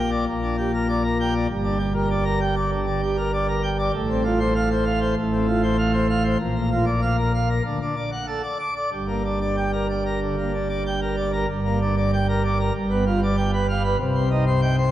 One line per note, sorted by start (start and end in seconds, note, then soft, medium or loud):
0.00 0.26 A#1 medium
0.00 0.26 A#2 medium
0.11 0.25 D5 medium
0.28 1.47 A#1 medium
0.28 1.47 A#2 medium
0.42 0.56 D4 medium
0.58 0.71 G4 medium
0.74 0.87 A#4 medium
0.89 1.02 D5 medium
1.04 1.17 A#4 medium
1.20 1.33 G5 medium
1.34 1.47 D5 medium
1.48 3.90 G1 loud
1.48 3.90 G2 medium
1.63 1.78 D4 medium
1.79 1.93 G4 medium
1.94 2.08 A#4 medium
2.10 2.24 D5 medium
2.25 2.39 A#4 medium
2.41 2.55 G5 loud
2.56 2.70 D5 medium
2.72 2.86 D3 medium
2.87 3.01 D4 medium
3.02 3.16 G4 medium
3.17 3.31 A#4 medium
3.33 3.47 D5 medium
3.48 3.62 A#4 medium
3.63 3.77 G5 medium
3.78 3.92 D5 medium
3.94 5.15 A1 medium
3.94 5.15 A2 medium
4.10 4.23 C4 medium
4.25 4.39 F4 medium
4.40 4.54 C5 medium
4.55 4.69 F5 loud
4.71 4.85 C5 medium
4.85 4.99 F5 medium
5.01 5.15 C5 medium
5.17 6.37 A1 medium
5.17 6.37 A2 medium
5.33 5.46 C4 medium
5.48 5.61 F4 medium
5.63 5.77 C5 medium
5.79 5.92 F5 medium
5.93 6.07 C5 medium
6.09 6.23 F5 medium
6.24 6.38 C5 medium
6.39 7.61 A#1 medium
6.39 7.61 A#2 medium
6.55 6.69 A#3 medium
6.71 6.85 F4 medium
6.86 7.00 D5 medium
7.02 7.16 F5 medium
7.18 7.32 A#4 medium
7.34 7.48 F5 medium
7.49 7.63 A#4 medium
7.65 7.78 D2 medium
7.65 7.78 D3 medium
7.82 7.95 D4 medium
7.96 8.10 D5 medium
8.12 8.26 F#5 medium
8.27 8.41 A4 medium
8.43 8.57 D5 medium
8.59 8.74 D6 medium
8.76 8.89 D5 medium
8.92 11.45 G1 medium
8.92 11.45 G2 medium
9.08 9.22 A#3 medium
9.24 9.39 D4 medium
9.41 9.55 D5 medium
9.57 9.71 G5 medium
9.73 9.87 A#4 medium
9.89 10.04 D5 medium
10.06 10.20 A#4 medium
10.22 10.36 D3 medium
10.38 10.52 A#3 medium
10.54 10.68 D4 medium
10.69 10.83 D5 soft
10.86 11.00 G5 medium
11.01 11.15 A#4 medium
11.16 11.31 D5 medium
11.33 11.46 A#4 medium
11.49 12.70 G1 medium
11.49 12.70 G2 medium
11.65 11.79 A#3 medium
11.81 11.95 D4 medium
11.97 12.11 D5 medium
12.13 12.26 G5 medium
12.29 12.42 A#4 medium
12.44 12.58 D5 medium
12.60 12.72 A#4 medium
12.74 13.95 G1 medium
12.74 13.95 G2 medium
12.90 13.04 B3 medium
13.06 13.20 F4 medium
13.23 13.36 D5 medium
13.37 13.51 G5 loud
13.53 13.67 B4 medium
13.69 13.82 F5 medium
13.84 13.97 B4 medium
13.99 14.91 C2 medium
13.99 14.91 C3 medium
14.15 14.29 C4 medium
14.31 14.44 D#4 medium
14.47 14.60 C5 medium
14.62 14.75 G5 medium
14.78 14.91 C5 medium